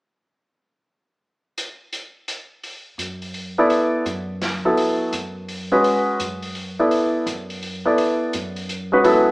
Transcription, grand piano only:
3.58 B3 E4 A4 D5
4.65 F#3 B3 E4 A4
5.72 G#3 C#4 F#4 B4
6.79 B3 E4 A4 D5
7.85 B3 E4 A4 D5
8.92 G#3 C#4 F#4 B4
9.04 F#3 B3 E4 A4

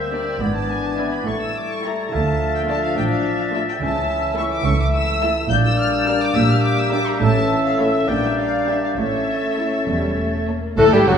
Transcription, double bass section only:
Already playing: D2
0.41 G#1
1.27 A1
2.13 D2
2.97 A1
3.82 C#2
4.65 C#2
5.50 A#1
6.35 A#1
7.21 A1
8.08 A#1
8.98 A1
9.88 E1
10.78 A1
11.08 F#1

